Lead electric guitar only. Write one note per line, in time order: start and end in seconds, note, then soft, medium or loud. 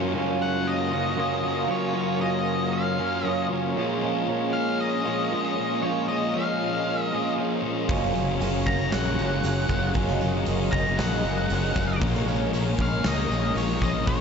0.42 0.67 F#5 medium
0.68 1.70 D#5 loud
1.71 2.21 C#5 medium
2.21 2.74 D#5 medium
2.73 3.27 F5 medium
3.27 3.46 D#5 medium
4.53 4.80 F5 loud
4.81 5.82 D#5 loud
5.82 6.08 C#5 medium
6.08 6.32 D#5 medium
6.34 7.04 F5 medium
7.04 7.33 D#5 medium
8.66 8.93 A#5 medium
8.92 9.91 F#5 medium
10.72 10.99 A#5 medium
10.97 11.97 F#5 medium
12.82 13.07 F5 loud
13.07 13.57 D#5 loud
13.57 13.82 C#5 medium
13.83 14.07 D#5 medium
14.08 14.21 C#5 medium